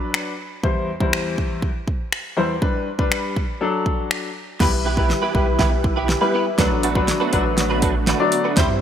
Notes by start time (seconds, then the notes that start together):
Already playing: F#3 D4 B4
0.14 finger snap
0.63 E2 G3 E4 C5, kick
1.00 E2 G3 E4 C5, kick
1.13 finger snap
1.38 kick
1.62 kick
1.88 kick
2.12 finger snap
2.37 E2 G3 E4 C5
2.62 G3 D4 B4, kick
2.99 G3 D4 B4, kick
3.12 finger snap
3.36 kick
3.61 F#3 D4 A4
3.86 kick
4.11 finger snap
4.60 E2 E3 G3 B3 E4 G4 B4, kick, snare, crash
4.72 B1, muted clean electric guitar stroke
4.85 B3 E4 G4 B4
4.97 G3 B3 E4 G4 B4, kick
5.09 muted clean electric guitar stroke, snare
5.22 B3 E4 G4 B4
5.34 B1 G3 B3 E4 G4 B4, kick
5.47 muted clean electric guitar stroke
5.59 B3 E4 G4 B4, kick, snare
5.71 muted clean electric guitar stroke
5.84 muted clean electric guitar stroke, kick
5.96 B3 E4 G4 B4
6.09 muted clean electric guitar stroke, snare
6.21 G3 B3 E4 G4 B4
6.33 B3 E4 G4 B4
6.46 muted clean electric guitar stroke
6.58 D2 D3 F#3 A3 B3 D4 F#4 B4, kick, snare, closed hi-hat
6.70 A1, muted clean electric guitar stroke
6.83 A3 D4 F#4 B4, closed hi-hat
6.95 F#3 A3 D4 F#4 B4, kick
7.08 muted clean electric guitar stroke, snare, closed hi-hat
7.20 A3 D4 F#4 B4
7.32 A1 F#3 A3 D4 F#4 B4, kick, closed hi-hat
7.45 muted clean electric guitar stroke
7.57 muted clean electric guitar stroke, snare, closed hi-hat
7.70 A3 D4 F#4 B4
7.82 A3 D4 F#4 B4, kick, closed hi-hat
7.95 muted clean electric guitar stroke
8.07 A3 D4 F#4 B4, snare, closed hi-hat
8.19 F#3 D4 D5, muted clean electric guitar stroke
8.32 muted clean electric guitar stroke, closed hi-hat
8.44 A3 D4 F#4 B4
8.57 E2 G3 C4 E4 G4 C5, kick, snare, closed hi-hat
8.69 G2, muted clean electric guitar stroke